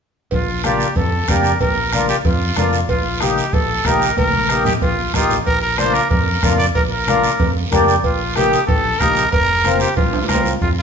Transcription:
0.31 fingered electric bass A#1, trumpet F4, bombo low, cowbell, high conga, low conga, long guiro
0.64 accordion A#3 D4 F4, trumpet G4, bombo rim, cowbell, high conga, short guiro
0.80 short guiro
0.96 fingered electric bass F2, trumpet A4, bombo low, cowbell, high conga, low conga, long guiro
1.28 fingered electric bass F2, accordion A#3 D4 G4, trumpet A#4, bombo low, bombo rim, cowbell, high conga, short guiro
1.44 short guiro
1.60 fingered electric bass A#1, trumpet A#4, bombo low, cowbell, high conga, low conga, long guiro
1.93 accordion A#3 D4 F4, bombo rim, cowbell, high conga, short guiro
2.09 trumpet G4, short guiro
2.25 fingered electric bass F2, trumpet F4, bombo low, cowbell, high conga, low conga, long guiro
2.56 fingered electric bass F2, accordion A#3 D4 F4, trumpet F4, bombo rim, cowbell, high conga, low timbale, short guiro
2.73 short guiro
2.89 fingered electric bass A#1, trumpet F4, bombo low, cowbell, high conga, low conga, long guiro
3.20 accordion A#3 D#4 G4, trumpet G4, bombo rim, cowbell, high conga, short guiro
3.38 short guiro
3.53 fingered electric bass A#1, trumpet A4, bombo low, cowbell, high conga, low conga, long guiro
3.85 fingered electric bass A#1, accordion A#3 D#4 G4, trumpet A#4, bombo low, bombo rim, cowbell, high conga, short guiro
4.02 short guiro
4.17 fingered electric bass A#1, trumpet A#4, bombo low, cowbell, high conga, long guiro
4.33 high conga
4.49 accordion A#3 D#4 G4, bombo rim, cowbell, short guiro
4.65 trumpet G4, low conga, short guiro
4.82 fingered electric bass A#1, trumpet F4, bombo low, cowbell, low conga, long guiro
5.13 fingered electric bass A#1, accordion A#3 D#4 G4, trumpet F4, bombo low, bombo rim, cowbell, low conga, low timbale, short guiro
5.30 low conga, short guiro
5.46 fingered electric bass A#1, trumpet A#4, bombo low, cowbell, high conga, long guiro
5.62 trumpet A#4
5.78 accordion A#3 D4 F4, trumpet C5, bombo rim, cowbell, high conga, short guiro
5.94 trumpet A#4, short guiro
6.10 fingered electric bass F2, trumpet A#4, bombo low, cowbell, high conga, low conga, long guiro
6.43 fingered electric bass F2, accordion A#3 D4 F4, bombo low, bombo rim, cowbell, high conga, low conga, short guiro
6.58 trumpet D5, short guiro
6.75 fingered electric bass A#1, trumpet A#4, bombo low, cowbell, high conga, low conga, long guiro
6.91 trumpet A#4
7.07 accordion A#3 D4 F4, bombo rim, cowbell, high conga, short guiro
7.24 short guiro
7.40 fingered electric bass F2, bombo low, cowbell, high conga, low conga, long guiro
7.72 fingered electric bass F2, accordion A#3 D4 G4, bombo low, bombo rim, cowbell, high conga, short guiro
7.88 short guiro
8.04 fingered electric bass A#1, trumpet F4, bombo low, cowbell, high conga, long guiro
8.36 accordion A#3 D#4 G4, trumpet G4, bombo rim, cowbell, high conga, short guiro
8.53 short guiro
8.67 fingered electric bass A#1, trumpet A4, bombo low, cowbell, high conga, low conga, long guiro
8.99 fingered electric bass A#1, accordion A#3 D#4 G4, trumpet A#4, bombo low, bombo rim, cowbell, high conga, short guiro
9.16 short guiro
9.31 fingered electric bass F1, trumpet A#4, bombo low, cowbell, high conga, low conga, long guiro
9.65 accordion A#3 C4 F4, bombo rim, cowbell, high conga, short guiro
9.80 trumpet G4, short guiro
9.96 fingered electric bass C2, trumpet F4, bombo low, cowbell, high conga, low conga, long guiro
10.13 high timbale
10.24 low timbale
10.28 fingered electric bass C2, accordion A#3 C4 F4, trumpet A#4, bombo low, bombo rim, cowbell, high conga, short guiro
10.35 low timbale
10.45 low timbale, short guiro
10.61 fingered electric bass F2, trumpet F4, bombo low, high conga, low conga, long guiro
10.79 trumpet F4

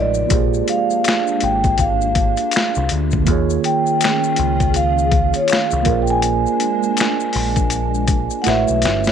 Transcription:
Already playing: picked electric bass A1, analog synth pad C3 F3 G#3, tine electric piano G#3 D#4 F4 A#4 F5, vibraphone D5
0.14 maracas
0.27 tine electric piano A#3 F4 G4, analog synth pad A#3 D4, kick, closed hi-hat, maracas
0.31 picked electric bass A#1, tine electric piano G#4 C5
0.36 tine electric piano D5
0.54 maracas
0.68 vibraphone F5, closed hi-hat, maracas
0.90 maracas
1.04 finger snap, closed hi-hat, maracas
1.08 finger snap, snare
1.27 maracas
1.40 picked electric bass G#1, vibraphone G5, closed hi-hat
1.64 kick, closed hi-hat, maracas
1.78 vibraphone F5, kick, closed hi-hat, maracas
2.01 maracas
2.15 kick, closed hi-hat
2.37 closed hi-hat, maracas
2.51 finger snap, closed hi-hat, maracas
2.56 finger snap, snare
2.75 picked electric bass C2, maracas
2.89 picked electric bass D2, closed hi-hat
3.11 kick, maracas
3.23 tine electric piano D#3 A#3, closed hi-hat, maracas
3.27 picked electric bass D#2, analog synth pad D#3 C#4 F4 G#4, tine electric piano F4 G#4, kick
3.32 tine electric piano C#5
3.50 maracas
3.64 vibraphone G5, closed hi-hat, maracas
3.87 maracas
4.01 finger snap, closed hi-hat, maracas
4.04 finger snap, snare
4.24 maracas
4.36 picked electric bass C#2, closed hi-hat
4.60 kick, closed hi-hat, maracas
4.74 vibraphone F5, closed hi-hat, maracas
4.98 maracas
5.11 kick, closed hi-hat
5.34 vibraphone C#5, closed hi-hat, maracas
5.48 vibraphone F5, finger snap, closed hi-hat, maracas
5.53 finger snap, snare
5.71 picked electric bass C2, maracas
5.83 analog synth pad G#3 A#3 D4, tine electric piano A#3 F4 A#4, kick, closed hi-hat
5.87 picked electric bass A#1, tine electric piano G#4 C5
5.92 tine electric piano D5
6.02 vibraphone G5
6.07 vibraphone G#5, maracas
6.22 closed hi-hat, maracas
6.46 maracas
6.60 closed hi-hat, maracas
6.83 maracas
6.97 finger snap, closed hi-hat, maracas
7.00 finger snap, snare
7.20 maracas
7.33 picked electric bass A#1, open hi-hat, maracas
7.56 kick, closed hi-hat, maracas
7.70 closed hi-hat, maracas
7.94 maracas
8.08 kick, closed hi-hat, maracas
8.30 maracas
8.42 tine electric piano A3 E4, vibraphone F#5, closed hi-hat
8.46 picked electric bass A1, analog synth pad F#3 A3 C#4, tine electric piano F#4 B4 C#5, vibraphone E5, finger snap, snare, maracas
8.68 picked electric bass B1, maracas
8.82 picked electric bass G1, snare, closed hi-hat, maracas
9.04 vibraphone C#5, snare, maracas

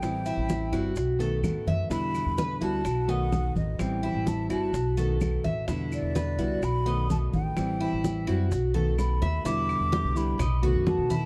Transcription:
Already playing: flute G5
0.02 upright bass A1, nylon-string guitar E3 G3 C4 E4, high bongo, claves, maracas
0.26 cuban tres E4, high bongo, high conga, maracas
0.37 upright bass A1
0.49 high bongo, high conga, maracas
0.72 upright bass G1, nylon-string guitar G3 C4 E4, cuban tres F#4, high bongo, claves, maracas
0.95 upright bass B1, muted nylon-string guitar stroke, high bongo, high conga, maracas
1.19 nylon-string guitar D#3 A3 B3 F#4, cuban tres A4, high conga, maracas
1.42 upright bass A2, nylon-string guitar D#3 A3 B3 F#4, high bongo, low bongo, high conga, claves, maracas
1.66 upright bass F#2, cuban tres E5, high bongo, high conga, maracas
1.90 upright bass E2, nylon-string guitar B2 D3 G3 B3 E4, cuban tres E4, flute B5, high bongo, high conga, maracas
2.15 high bongo, high conga, claves, maracas
2.26 upright bass E2
2.38 cuban tres B4, high bongo, high conga, maracas
2.61 upright bass D2, nylon-string guitar D3 G3 B3 E4, cuban tres F#4, flute A5, high bongo, high conga, maracas
2.85 upright bass B1, muted nylon-string guitar stroke, high bongo, high conga, claves, maracas
3.08 nylon-string guitar D#3 A3 B3 F#4, cuban tres D#4, flute F#5, high conga
3.31 nylon-string guitar D#3 A3 B3 F#4, high bongo, low bongo, high conga, maracas
3.55 upright bass A1, flute D#5, high bongo, high conga, maracas
3.79 upright bass A1, nylon-string guitar E3 G3 C4 E4, flute G5, high bongo, high conga, claves, maracas
4.03 cuban tres E4, high bongo, high conga
4.14 upright bass A1
4.27 flute A5, high bongo, high conga, maracas
4.50 upright bass G1, nylon-string guitar G3 C4 E4, cuban tres F#4, flute A5, high bongo, claves, maracas
4.73 upright bass B1, muted nylon-string guitar stroke, high bongo, high conga, maracas
4.97 nylon-string guitar D#3 A3 B3 F#4, cuban tres A4, high conga, maracas
5.20 nylon-string guitar D#3 A3 B3 F#4, high bongo, low bongo, high conga, claves, maracas
5.44 upright bass A1, cuban tres E5, high bongo, high conga, maracas
5.68 upright bass E2, nylon-string guitar B2 D3 G3 B3 E4, cuban tres E4, high bongo, high conga, maracas
5.92 flute D5, high bongo, high conga, claves, maracas
6.02 upright bass E2
6.15 cuban tres B4, high bongo, high conga, maracas
6.38 upright bass C2, nylon-string guitar D3 G3 B3 E4, cuban tres F#4, high bongo, high conga, maracas
6.62 upright bass B1, flute B5, high bongo, high conga, claves, maracas
6.86 nylon-string guitar D#3 A3 B3 F#4, cuban tres D#4, high conga
7.09 nylon-string guitar D#3 A3 B3 F#4, flute A5, high bongo, low bongo, high conga, maracas
7.33 upright bass A1, flute G5, high bongo, high conga, maracas
7.57 upright bass A1, nylon-string guitar E3 G3 C4 E4, high bongo, high conga, claves, maracas
7.81 cuban tres E4, high bongo, high conga
7.92 upright bass A1
8.04 high bongo, high conga, maracas
8.27 upright bass F#2, nylon-string guitar G3 C4 E4, cuban tres F#4, high bongo, claves, maracas
8.51 upright bass B1, muted nylon-string guitar stroke, high bongo, high conga, maracas
8.74 nylon-string guitar D#3 A3 B3 F#4, cuban tres A4, high conga
8.98 nylon-string guitar D#3 A3 B3 F#4, flute B5, high bongo, low bongo, claves, maracas
9.21 upright bass D#2, cuban tres E5, high bongo, low conga, maracas
9.45 upright bass E2, nylon-string guitar B2 D3 G3 B3 E4, cuban tres E4, flute D6, high bongo, high conga, maracas
9.69 high bongo, high conga, claves, maracas
9.80 upright bass E2
9.92 cuban tres G4, high bongo, high conga, maracas
10.04 upright bass C2
10.16 nylon-string guitar D3 G3 B3 E4, flute B5, high bongo, maracas
10.39 upright bass B1, cuban tres D#4, muted nylon-string guitar stroke, high bongo, high conga, low conga, claves, maracas
10.62 nylon-string guitar D#3 A3 B3 F#4, cuban tres F#4, high conga, low conga, maracas
10.74 upright bass F#2
10.86 nylon-string guitar D#3 A3 B3 F#4, flute A5, high bongo, low bongo, high conga, maracas
10.98 upright bass B2
11.10 cuban tres E4, high bongo, high conga, maracas

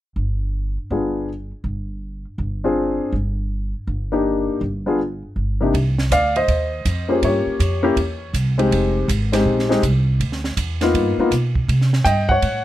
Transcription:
0.16 upright bass G1
0.90 upright bass G1, grand piano B3 D4 F4 G#4
1.64 upright bass G1
2.38 upright bass G1
2.64 grand piano C4 D4 F4 G#4
3.12 upright bass G1
3.87 upright bass G1
4.12 grand piano A#3 D4 D#4 G4
4.61 upright bass G1
4.86 grand piano B3 D4 F4 G#4
5.36 upright bass G1
5.61 grand piano C3 A#3 D4 D#4 G4
5.74 upright bass C2, kick, ride
5.98 snare
6.10 upright bass D2, grand piano D5 F5, kick, hi-hat pedal, ride
6.36 grand piano C5 D#5, ride
6.48 upright bass D#2, kick, ride
6.85 upright bass F2, kick, hi-hat pedal, ride
7.09 grand piano A#3 C#4 F4 G4 G#4 C5
7.22 upright bass G2, grand piano G4 C#5, kick, ride
7.46 muted upright bass stroke
7.59 upright bass F2, kick, hi-hat pedal, ride
7.83 grand piano A#3 C#4 E4 G4
7.96 upright bass E2, kick, ride
8.33 upright bass C2, kick, hi-hat pedal, ride
8.58 grand piano G#3 C4 D#4 G4, ride
8.71 upright bass F1, kick, ride
9.08 upright bass G#1, kick, hi-hat pedal, ride
9.32 grand piano G#3 C4 D#4 G4, snare, ride
9.45 upright bass A#1, kick
9.59 snare
9.69 grand piano G#3 C4 D#4 G4, snare
9.83 upright bass C2, kick, hi-hat pedal, ride
10.20 upright bass D2, kick, ride
10.32 snare
10.44 snare
10.57 upright bass E2, kick, hi-hat pedal, ride
10.81 grand piano A#3 B3 D#4 F4, snare, ride
10.94 upright bass G2, kick, ride
11.17 grand piano A#3 B3 D#4 F4, muted upright bass stroke
11.31 upright bass B2, kick, hi-hat pedal, ride
11.55 kick
11.68 upright bass C3, kick, ride
11.81 snare
11.93 snare
12.05 upright bass G2, grand piano D#5 G5, kick, hi-hat pedal, ride
12.29 grand piano C#5 F#5, kick
12.42 upright bass A2, kick, ride

